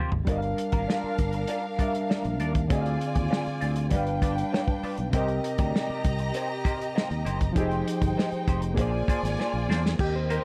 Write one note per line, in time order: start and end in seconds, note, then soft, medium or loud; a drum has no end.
0.00 0.22 D#3 medium
0.00 0.11 A#3 medium
0.00 0.23 C4 medium
0.00 0.11 F4 medium
0.00 0.11 G4 medium
0.00 0.24 G4 medium
0.00 0.11 C5 medium
0.00 0.25 F5 medium
0.12 0.25 G#1 medium
0.12 muted clean electric guitar stroke soft
0.12 floor tom medium
0.25 0.53 G1 medium
0.25 1.75 G3 medium
0.25 2.66 D4 medium
0.25 1.76 D4 medium
0.25 0.44 D4 medium
0.25 0.42 F4 medium
0.25 2.66 A#4 medium
0.25 0.42 A#4 medium
0.25 2.66 F5 medium
0.25 kick loud
0.25 closed hi-hat medium
0.29 1.77 A#4 medium
0.29 0.41 D5 medium
0.29 0.36 D#5 medium
0.38 1.82 F5 medium
0.42 muted clean electric guitar stroke soft
0.42 closed hi-hat soft
0.57 muted clean electric guitar stroke soft
0.57 closed hi-hat medium
0.72 0.86 G#1 medium
0.72 0.86 D4 soft
0.72 0.86 F4 soft
0.72 0.86 A#4 soft
0.72 0.86 F5 medium
0.72 kick medium
0.72 closed hi-hat medium
0.88 1.16 D4 medium
0.88 1.16 F4 medium
0.88 1.16 A#4 medium
0.88 1.17 F5 medium
0.88 snare medium
1.04 muted fingered electric bass stroke soft
1.18 1.44 G1 medium
1.18 muted clean electric guitar stroke soft
1.18 kick medium
1.18 closed hi-hat medium
1.33 muted clean electric guitar stroke soft
1.33 closed hi-hat soft
1.48 1.65 D4 medium
1.48 1.64 F4 medium
1.48 1.63 A#4 medium
1.48 1.63 D5 medium
1.48 closed hi-hat medium
1.64 muted clean electric guitar stroke soft
1.78 2.70 G3 soft
1.78 1.92 D4 soft
1.78 2.70 D4 soft
1.78 1.93 F4 soft
1.78 1.93 A#4 medium
1.78 2.71 A#4 soft
1.78 1.93 D5 medium
1.78 1.87 E5 soft
1.78 kick medium
1.78 closed hi-hat medium
1.88 2.75 F5 soft
1.95 muted clean electric guitar stroke soft
1.95 closed hi-hat soft
2.10 2.27 D4 medium
2.10 2.25 F4 medium
2.10 2.24 A#4 medium
2.10 2.24 D5 medium
2.10 snare loud
2.24 2.41 A#1 medium
2.24 muted clean electric guitar stroke soft
2.24 closed hi-hat soft
2.40 2.66 D#2 medium
2.40 2.53 D4 medium
2.40 2.53 F4 soft
2.40 2.54 A#4 medium
2.40 2.54 D5 medium
2.40 closed hi-hat medium
2.55 muted clean electric guitar stroke soft
2.55 kick medium
2.55 closed hi-hat soft
2.68 2.96 D2 medium
2.68 3.88 D3 medium
2.68 2.98 C4 medium
2.68 3.89 C4 medium
2.68 2.98 F4 medium
2.68 3.90 F4 medium
2.68 2.99 G#4 medium
2.68 3.90 D5 medium
2.68 2.99 D5 medium
2.68 3.90 G#5 medium
2.68 kick loud
2.68 closed hi-hat medium
2.72 3.90 G#4 medium
2.72 2.79 D#5 medium
2.81 3.95 F5 medium
2.86 closed hi-hat soft
3.01 closed hi-hat medium
3.15 3.29 D#2 medium
3.15 muted clean electric guitar stroke soft
3.15 kick medium
3.15 closed hi-hat soft
3.30 3.48 C4 medium
3.30 3.45 F4 medium
3.30 3.45 G#4 medium
3.30 3.44 D5 medium
3.30 snare loud
3.45 muted clean electric guitar stroke soft
3.45 muted fingered electric bass stroke soft
3.45 closed hi-hat soft
3.61 3.93 D2 medium
3.61 3.74 C4 soft
3.61 3.75 F4 medium
3.61 3.75 G#4 medium
3.61 3.75 D5 medium
3.61 closed hi-hat medium
3.76 muted clean electric guitar stroke soft
3.76 closed hi-hat soft
3.89 4.42 G1 medium
3.89 5.10 G3 medium
3.89 4.09 D4 medium
3.89 5.11 D4 medium
3.89 4.07 F4 medium
3.89 5.11 B4 medium
3.89 4.06 B4 medium
3.89 5.11 G5 medium
3.89 kick medium
3.89 closed hi-hat medium
3.93 5.12 B4 medium
3.93 4.05 D5 medium
3.93 5.13 F5 medium
4.06 muted clean electric guitar stroke soft
4.06 closed hi-hat soft
4.22 4.36 D4 medium
4.22 4.36 F4 medium
4.22 4.36 B4 medium
4.22 4.36 D5 medium
4.22 kick medium
4.22 closed hi-hat medium
4.37 muted clean electric guitar stroke soft
4.37 closed hi-hat soft
4.52 4.73 D4 medium
4.52 4.68 F4 medium
4.52 4.67 B4 medium
4.52 4.67 D5 medium
4.52 snare loud
4.68 muted clean electric guitar stroke soft
4.68 kick medium
4.83 4.96 D4 medium
4.83 4.97 F4 medium
4.83 4.97 B4 medium
4.83 4.97 D5 medium
4.83 muted fingered electric bass stroke soft
4.83 open hi-hat soft
4.98 5.11 B1 medium
4.98 muted clean electric guitar stroke soft
4.98 closed hi-hat soft
5.10 5.39 C2 loud
5.10 7.51 C3 medium
5.10 5.57 G3 medium
5.10 5.31 A#3 medium
5.10 7.52 C4 medium
5.10 5.57 C4 medium
5.10 5.57 D#4 medium
5.10 5.57 G4 medium
5.10 7.53 G4 medium
5.10 7.53 D#5 medium
5.10 7.53 A#5 medium
5.10 kick loud
5.10 closed hi-hat medium
5.14 5.29 D#4 medium
5.14 5.28 G4 medium
5.14 7.53 A#4 medium
5.14 5.28 C5 medium
5.14 7.55 D#5 medium
5.28 muted clean electric guitar stroke soft
5.28 closed hi-hat soft
5.44 muted clean electric guitar stroke soft
5.44 closed hi-hat medium
5.58 5.72 D2 medium
5.58 5.72 A#3 soft
5.58 5.73 D#4 soft
5.58 5.73 G4 soft
5.58 5.72 D5 medium
5.58 kick loud
5.58 closed hi-hat medium
5.74 6.02 A#3 medium
5.74 6.02 D#4 medium
5.74 6.03 G4 medium
5.74 6.03 D5 medium
5.74 snare loud
5.90 muted fingered electric bass stroke soft
6.04 6.30 C2 medium
6.04 muted clean electric guitar stroke soft
6.04 kick medium
6.04 closed hi-hat medium
6.19 muted clean electric guitar stroke soft
6.19 closed hi-hat soft
6.34 6.52 A#3 medium
6.34 6.50 D#4 medium
6.34 6.49 G4 medium
6.34 6.49 C5 medium
6.34 closed hi-hat medium
6.50 muted clean electric guitar stroke soft
6.64 6.78 A#3 medium
6.64 6.78 D#4 medium
6.64 6.79 G4 medium
6.64 6.79 C5 medium
6.64 kick medium
6.64 closed hi-hat medium
6.80 muted clean electric guitar stroke soft
6.80 closed hi-hat soft
6.95 7.12 A#3 medium
6.95 7.10 D#4 medium
6.95 7.10 G4 medium
6.95 7.09 C5 medium
6.95 snare loud
7.10 7.23 D#2 medium
7.10 muted clean electric guitar stroke soft
7.10 closed hi-hat soft
7.25 7.51 F#1 medium
7.25 7.39 A#3 medium
7.25 7.39 D#4 medium
7.25 7.39 G4 medium
7.25 7.40 C5 medium
7.25 closed hi-hat medium
7.41 muted clean electric guitar stroke soft
7.41 kick medium
7.41 closed hi-hat soft
7.53 7.82 F1 medium
7.53 8.74 F3 medium
7.53 8.00 G3 medium
7.53 7.84 G#3 medium
7.53 8.00 C4 medium
7.53 8.75 D#4 medium
7.53 7.85 D#4 medium
7.53 8.00 D#4 medium
7.53 8.00 G4 medium
7.53 8.75 C5 medium
7.53 8.75 G5 medium
7.53 kick loud
7.53 closed hi-hat medium
7.57 7.85 G4 medium
7.57 8.76 G4 medium
7.57 8.75 G#4 medium
7.57 7.85 C5 medium
7.71 closed hi-hat soft
7.88 closed hi-hat medium
8.01 8.15 G1 medium
8.01 muted clean electric guitar stroke soft
8.01 kick medium
8.01 closed hi-hat soft
8.17 8.34 G#3 medium
8.17 8.32 D#4 medium
8.17 8.32 G4 medium
8.17 8.31 C5 medium
8.17 snare loud
8.32 muted clean electric guitar stroke soft
8.32 muted fingered electric bass stroke soft
8.32 closed hi-hat soft
8.48 8.78 F1 medium
8.48 8.61 G#3 medium
8.48 8.61 D#4 medium
8.48 8.61 G4 medium
8.48 8.62 C5 medium
8.48 kick medium
8.48 closed hi-hat medium
8.62 muted clean electric guitar stroke soft
8.62 closed hi-hat soft
8.74 9.03 A#1 medium
8.74 9.95 A#3 medium
8.74 9.97 F4 medium
8.74 9.96 G#4 medium
8.74 9.97 D5 medium
8.74 9.97 G#5 medium
8.74 kick medium
8.74 closed hi-hat medium
8.78 8.95 A#3 medium
8.78 8.93 D4 medium
8.78 8.93 G#4 medium
8.78 9.98 C5 medium
8.78 8.92 C5 medium
8.78 9.99 D5 medium
8.93 muted clean electric guitar stroke soft
9.08 9.22 A#3 medium
9.08 9.22 D4 medium
9.08 9.22 G#4 medium
9.08 9.23 C5 medium
9.08 muted fingered electric bass stroke soft
9.08 kick medium
9.08 closed hi-hat medium
9.23 9.36 G#1 medium
9.23 muted clean electric guitar stroke soft
9.23 snare soft
9.23 closed hi-hat soft
9.39 9.56 A#3 medium
9.39 9.54 D4 medium
9.39 9.54 G#4 medium
9.39 9.53 C5 medium
9.39 snare soft
9.54 9.66 A#1 medium
9.54 muted clean electric guitar stroke soft
9.69 9.94 E2 medium
9.69 9.82 A#3 medium
9.69 9.83 D4 medium
9.69 9.83 G#4 medium
9.69 9.83 C5 medium
9.69 snare medium
9.85 muted clean electric guitar stroke soft
9.85 snare medium
9.99 10.37 D#2 medium
9.99 10.44 C4 medium
9.99 10.16 G4 loud
9.99 10.44 A#4 medium
9.99 10.44 D#5 medium
9.99 kick loud
9.99 crash medium
10.16 10.29 C5 medium
10.30 10.44 A#3 medium
10.30 10.44 D#4 medium
10.30 10.44 G4 medium
10.30 10.44 A#4 medium
10.30 10.44 C5 medium
10.30 closed hi-hat medium